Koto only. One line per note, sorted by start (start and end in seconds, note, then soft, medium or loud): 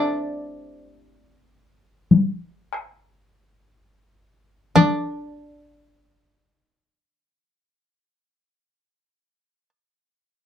0.00 1.78 A3 soft
0.00 1.54 C4 soft
0.00 1.39 D4 medium
0.00 1.28 E4 medium
0.00 1.09 G4 medium
0.00 0.97 A4 medium
0.00 0.85 C5 medium
0.00 3.34 D5 medium
0.00 1.17 E5 medium
4.75 9.69 D5 medium